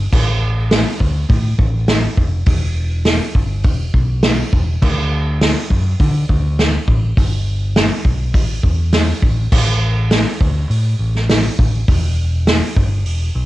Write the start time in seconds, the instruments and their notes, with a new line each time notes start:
0.12 picked electric bass A1, kick, crash
0.71 snare, open hi-hat
1.00 picked electric bass D2, kick
1.29 picked electric bass A2, kick, open hi-hat
1.58 picked electric bass A1, kick
1.88 snare, open hi-hat
2.18 picked electric bass F1, kick
2.46 picked electric bass E1, kick, open hi-hat
3.05 snare, open hi-hat
3.35 picked electric bass G1, kick
3.63 picked electric bass E1, kick, open hi-hat
3.94 picked electric bass B1, kick
4.23 snare, open hi-hat
4.53 picked electric bass E1, kick
4.82 picked electric bass D2, kick, crash
5.41 snare, open hi-hat
5.70 picked electric bass F#2, kick
6.00 picked electric bass D3, kick, open hi-hat
6.29 picked electric bass D2, kick
6.59 snare, open hi-hat
6.88 picked electric bass A1, kick
7.17 picked electric bass G1, kick, open hi-hat
7.76 snare, open hi-hat
8.05 picked electric bass B1, kick
8.34 picked electric bass A1, kick, open hi-hat
8.63 picked electric bass E2, kick
8.93 snare, open hi-hat
9.22 picked electric bass A1, kick
9.52 picked electric bass A1, kick, crash
10.11 snare, open hi-hat
10.41 picked electric bass D2, kick
10.70 picked electric bass A2, open hi-hat
10.99 picked electric bass A1
11.16 snare
11.29 snare, open hi-hat
11.59 picked electric bass A1, kick
11.88 picked electric bass E1, kick, open hi-hat
12.47 snare, open hi-hat
12.77 picked electric bass G1, kick
13.05 picked electric bass E1, open hi-hat
13.35 picked electric bass B1